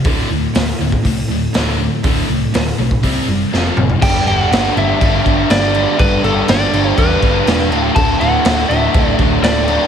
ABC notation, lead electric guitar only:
X:1
M:4/4
L:1/8
Q:1/4=122
K:G
V:1 name="Lead electric guitar"
z8 | z8 | g f2 e3 d2 | B A d2 B3 z |
a f2 e2 z d2 |]